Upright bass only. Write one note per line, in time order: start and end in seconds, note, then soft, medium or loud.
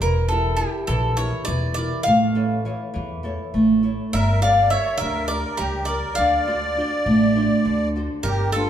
0.01 0.63 E1 medium
0.88 1.30 A#1 loud
1.48 1.89 E1 medium
2.07 2.68 A1 loud
2.96 3.37 E2 medium
3.54 3.95 A1 medium
4.14 4.75 G1 medium
5.02 5.42 D2 loud
5.59 6.01 C#2 medium
6.18 6.80 D2 medium
7.06 7.47 A1 loud
7.66 8.07 D2 medium
8.24 8.70 G1 medium